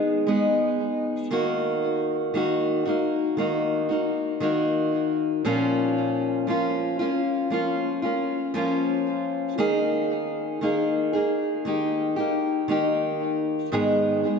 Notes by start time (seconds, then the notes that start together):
Already playing: D#3 G#3 B3 D#4 G#4
0.27 G#3 B3 D#4 G#4
1.31 D#3 A#3 D#4 F#4
2.34 D#3 A#3 D#4 F#4
2.86 A#3 D#4 F#4
3.37 D#3 A#3 D#4 F#4
3.89 A#3 D#4 F#4
4.40 D#3 A#3 D#4 F#4
5.45 A#2 F3 A#3 C#4 F4
6.47 F3 A#3 C#4 F4
6.99 A#3 C#4 F4
7.50 F3 A#3 C#4 F4
8.02 A#3 C#4 F4
8.54 F3 A#3 C#4 F4
9.58 D#3 A#3 D#4 G#4
10.61 D#3 A#3 D#4 G#4
11.13 A#3 D#4 G#4
11.65 D#3 A#3 D#4 G4
12.16 A#3 D#4 G4
12.68 D#3 A#3 D#4 G4
13.72 G#2 D#3 G#3 B3 D#4 G#4
14.23 G#3 B3 D#4 G#4